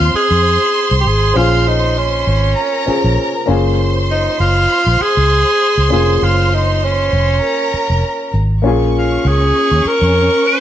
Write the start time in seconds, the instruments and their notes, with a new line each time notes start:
Already playing: grand piano C4 C#4 F4 G#4, tenor saxophone F4, violin section C5 C6
0.00 fingered electric bass D#2
0.14 tenor saxophone G#4, muted fingered electric bass stroke
0.31 fingered electric bass F2
0.91 fingered electric bass C2
1.01 tenor saxophone G4
1.05 fingered electric bass G#1, tenor saxophone G#4
1.34 fingered electric bass A#1, grand piano C#4 F4 C5, tenor saxophone F4
1.38 grand piano G#4
1.68 tenor saxophone D#4
1.98 tenor saxophone C#4
2.27 fingered electric bass G#1
2.56 violin section A#4 A#5
2.86 grand piano C#4 F4 G#4 C5, muted fingered electric bass stroke
3.04 fingered electric bass A#1
3.46 fingered electric bass F#1, grand piano A#3 C#4 F4, violin section C5 C6
3.51 grand piano G#4
4.11 tenor saxophone D#4
4.40 fingered electric bass F#1, tenor saxophone F4
4.87 fingered electric bass A#1
5.00 tenor saxophone G#4, muted fingered electric bass stroke
5.17 fingered electric bass C#2
5.78 fingered electric bass C#2
5.89 fingered electric bass F1, grand piano A#3 C#4 F4
5.93 tenor saxophone G#4, grand piano G#4
6.22 fingered electric bass F#1, tenor saxophone F4
6.54 tenor saxophone D#4
6.84 tenor saxophone C#4
7.13 fingered electric bass F1
7.43 violin section A#4 A#5
7.74 muted fingered electric bass stroke
7.90 fingered electric bass F1
8.34 fingered electric bass G#1
8.62 fingered electric bass A#1, grand piano A#3 C#4 F4, violin section C#4 C#6
8.67 grand piano G#4
8.98 tenor saxophone F4
9.25 fingered electric bass C#2, tenor saxophone G#4
9.71 fingered electric bass D#2
9.85 tenor saxophone A#4, muted fingered electric bass stroke
10.02 fingered electric bass F2
10.47 tenor saxophone C5